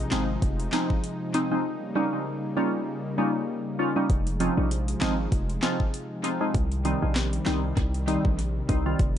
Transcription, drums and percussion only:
0.11 snare, clap, closed hi-hat
0.42 kick, closed hi-hat
0.60 closed hi-hat
0.72 snare, clap, closed hi-hat
0.90 kick
1.04 closed hi-hat
1.34 closed hi-hat
4.10 kick, closed hi-hat
4.27 closed hi-hat
4.40 closed hi-hat
4.71 closed hi-hat
4.88 closed hi-hat
5.01 snare, clap, closed hi-hat
5.32 kick, closed hi-hat
5.50 closed hi-hat
5.62 snare, clap, closed hi-hat
5.80 kick
5.94 closed hi-hat
6.24 closed hi-hat
6.54 kick, closed hi-hat
6.72 closed hi-hat
6.85 closed hi-hat
7.15 snare, clap, closed hi-hat
7.33 closed hi-hat
7.46 snare, clap, closed hi-hat
7.77 kick, closed hi-hat
7.94 closed hi-hat
8.08 closed hi-hat
8.25 kick
8.39 closed hi-hat
8.69 kick, closed hi-hat
8.99 kick, closed hi-hat

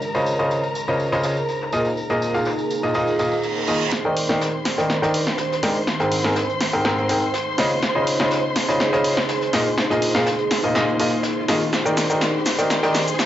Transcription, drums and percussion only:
0.02 closed hi-hat, tambourine
0.15 tambourine
0.26 closed hi-hat, tambourine
0.39 tambourine
0.51 closed hi-hat, tambourine
0.64 tambourine
0.75 closed hi-hat, tambourine
0.88 snare, tambourine
0.99 closed hi-hat, tambourine
1.13 snare, tambourine
1.23 snare, closed hi-hat, tambourine
1.37 tambourine
1.48 closed hi-hat, tambourine
1.61 snare
1.72 closed hi-hat, tambourine
1.85 tambourine
1.97 closed hi-hat, tambourine
2.10 snare, tambourine
2.22 closed hi-hat, tambourine
2.35 tambourine
2.45 snare, closed hi-hat, tambourine
2.59 tambourine
2.70 closed hi-hat, tambourine
2.94 closed hi-hat, tambourine
3.07 tambourine
3.19 closed hi-hat, tambourine
3.32 closed hi-hat, tambourine
3.43 closed hi-hat, tambourine
3.56 tambourine
3.67 tambourine
3.81 tambourine
3.92 snare, closed hi-hat
4.17 closed hi-hat, open hi-hat
4.29 snare
4.41 snare, closed hi-hat
4.65 snare, closed hi-hat, open hi-hat
4.79 snare
4.90 snare, closed hi-hat
5.03 snare
5.14 closed hi-hat, open hi-hat
5.27 snare, closed hi-hat
5.38 snare, closed hi-hat
5.52 snare
5.63 snare, closed hi-hat, open hi-hat
5.87 snare, closed hi-hat
6.00 snare
6.12 open hi-hat
6.25 snare
6.36 snare, closed hi-hat
6.49 closed hi-hat
6.61 snare, closed hi-hat, open hi-hat
6.85 snare, closed hi-hat
6.98 closed hi-hat
7.09 closed hi-hat, open hi-hat
7.22 closed hi-hat
7.34 snare, closed hi-hat
7.58 snare, open hi-hat
7.70 closed hi-hat
7.82 snare, closed hi-hat
8.07 closed hi-hat, open hi-hat
8.20 snare
8.31 snare, closed hi-hat
8.56 snare, closed hi-hat, open hi-hat
8.69 snare
8.80 snare, closed hi-hat
8.93 snare
9.04 closed hi-hat, open hi-hat
9.17 snare, closed hi-hat
9.29 snare, closed hi-hat
9.41 snare
9.53 snare, closed hi-hat, open hi-hat
9.78 snare, closed hi-hat
9.91 snare
10.02 open hi-hat
10.15 snare
10.26 snare, closed hi-hat
10.38 closed hi-hat
10.51 snare, open hi-hat
10.75 snare, closed hi-hat
10.88 closed hi-hat
10.99 closed hi-hat, open hi-hat
11.12 closed hi-hat
11.23 snare, closed hi-hat
11.48 snare, closed hi-hat, open hi-hat
11.61 closed hi-hat
11.73 snare, closed hi-hat, cabasa
11.86 cabasa
11.97 snare, closed hi-hat, open hi-hat, cabasa
12.10 cabasa
12.21 snare, closed hi-hat, cabasa
12.46 snare, closed hi-hat, open hi-hat, cabasa
12.58 snare, cabasa
12.70 snare, closed hi-hat, cabasa
12.83 snare
12.95 snare, closed hi-hat, open hi-hat, cabasa
13.07 closed hi-hat, cabasa
13.19 snare, closed hi-hat, cabasa

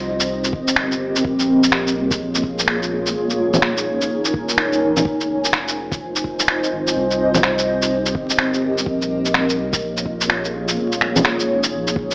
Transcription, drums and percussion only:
0.20 shaker
0.44 shaker
0.53 kick
0.68 shaker
0.76 finger snap
0.92 shaker
1.16 shaker
1.25 kick
1.39 shaker
1.63 shaker
1.72 finger snap
1.87 shaker
2.11 kick, shaker
2.35 shaker
2.44 kick
2.59 shaker
2.68 finger snap
2.83 shaker
3.06 shaker
3.30 shaker
3.54 low bongo, shaker
3.62 finger snap
3.77 shaker
4.01 shaker
4.25 shaker
4.34 kick
4.49 shaker
4.58 finger snap
4.73 shaker
4.97 low bongo, shaker
5.05 kick
5.21 shaker
5.44 shaker
5.53 finger snap
5.68 shaker
5.92 kick, shaker
6.16 shaker
6.24 kick
6.40 shaker
6.48 finger snap
6.64 shaker
6.87 shaker
7.11 shaker
7.34 low bongo, shaker
7.43 finger snap
7.58 shaker
7.82 shaker
8.06 shaker
8.15 kick
8.30 shaker
8.38 finger snap
8.54 shaker
8.78 shaker
8.86 kick
9.02 shaker
9.25 shaker
9.34 finger snap
9.49 shaker
9.73 kick, shaker
9.97 shaker
10.06 kick
10.21 shaker
10.30 finger snap
10.45 shaker
10.68 shaker
10.92 shaker
11.01 finger snap
11.16 low bongo, shaker
11.25 finger snap
11.40 shaker
11.63 shaker
11.87 shaker
11.96 kick
12.11 shaker

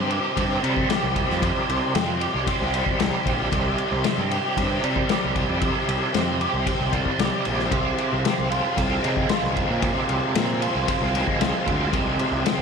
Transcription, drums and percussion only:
0.11 ride
0.37 kick, ride
0.64 ride
0.77 kick
0.90 snare, ride
1.16 kick, ride
1.30 snare
1.42 kick, ride
1.70 ride
1.95 snare, ride
2.21 ride
2.47 kick, ride
2.74 ride
2.86 kick
3.00 snare, ride
3.26 kick, ride
3.52 kick, ride
3.78 ride
4.04 snare, ride
4.31 ride
4.57 kick, ride
4.84 ride
4.96 kick
5.09 snare, ride
5.35 kick, ride
5.61 kick, ride
5.89 ride
6.14 snare, ride
6.41 ride
6.67 kick, ride
6.93 kick, ride
7.06 kick
7.19 snare, ride
7.45 ride
7.59 snare
7.71 kick, ride
7.98 ride
8.25 snare, ride
8.52 ride
8.77 kick, ride
9.04 ride
9.17 kick
9.29 snare, ride
9.44 snare
9.56 kick, ride
9.82 kick, ride
10.09 ride
10.35 snare, ride
10.62 ride
10.88 kick, ride
11.15 ride
11.27 kick
11.41 snare, ride
11.67 kick, ride
11.93 kick, ride
12.19 ride
12.46 snare, ride

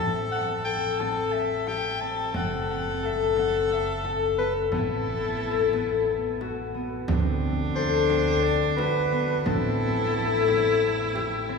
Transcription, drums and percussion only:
0.66 frame drum
1.00 frame drum
1.34 frame drum
1.67 frame drum
2.34 frame drum
3.03 frame drum
3.37 frame drum
3.70 frame drum
4.04 frame drum
4.72 frame drum
5.73 frame drum
6.07 frame drum
6.41 frame drum
7.08 frame drum
7.77 frame drum
8.10 frame drum
8.45 frame drum
8.78 frame drum
9.46 frame drum
10.14 frame drum
10.48 frame drum
10.82 frame drum
11.16 frame drum

